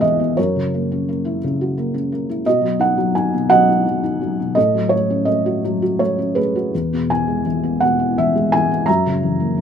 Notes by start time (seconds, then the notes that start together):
Already playing: E2 B2 E3 G#3 B3 E4 E5 F#5 G#5
0.01 E3 D#5
0.20 B3
0.37 F#2 A#4 C#5
0.56 C#3
0.74 A#3
0.92 C#4
1.09 A#3
1.25 E4
1.44 C#3
1.61 F#4
1.78 A#3
1.94 C#4
2.12 A#3
2.30 E4
2.45 B2 F#4 D#5
2.62 F#3
2.79 D#4 F#5
2.98 F#3
3.15 D#4 G#5
3.34 B2
3.50 F#3 D#5 F#5
3.69 D#4
3.87 F#3
4.04 D#4
4.21 F#3
4.40 B2
4.55 A2 A4 D#5
4.75 F#3
4.89 A3 C#5
5.10 C#4
5.25 A3 D#5
5.46 F#4
5.64 F#3
5.82 F#4
5.99 A3 C#5
6.18 C#4
6.35 A3 G#4 B4
6.56 F#4
6.75 E2
6.93 B2
7.10 E3 G#5
7.28 G#3
7.46 E3
7.63 B3
7.80 B2 F#5
7.99 E4
8.18 E3 E5
8.36 G#3
8.52 E3 G#5
8.71 B3
8.86 F#2 E5 A#5
9.07 C#3
9.23 E3
9.40 A#3
9.57 E3